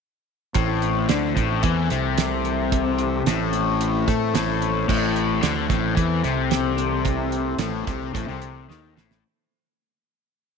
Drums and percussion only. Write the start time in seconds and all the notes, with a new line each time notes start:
0.55 kick, closed hi-hat
0.82 closed hi-hat
1.09 snare, closed hi-hat
1.37 kick, closed hi-hat
1.63 kick, closed hi-hat
1.90 snare, closed hi-hat
2.18 snare, closed hi-hat
2.45 closed hi-hat
2.72 kick, closed hi-hat
2.98 closed hi-hat
3.26 snare, closed hi-hat
3.53 closed hi-hat
3.81 closed hi-hat
4.08 kick, snare, closed hi-hat
4.35 snare, closed hi-hat
4.62 closed hi-hat
4.89 kick, crash
5.16 closed hi-hat
5.43 snare, closed hi-hat
5.70 kick, snare, closed hi-hat
5.97 kick, closed hi-hat
6.24 snare, closed hi-hat
6.51 snare, closed hi-hat
6.78 closed hi-hat
7.05 kick, closed hi-hat
7.32 closed hi-hat
7.59 snare, closed hi-hat
7.87 kick, closed hi-hat
8.15 kick, closed hi-hat
8.42 closed hi-hat
8.70 snare
8.97 snare
9.11 snare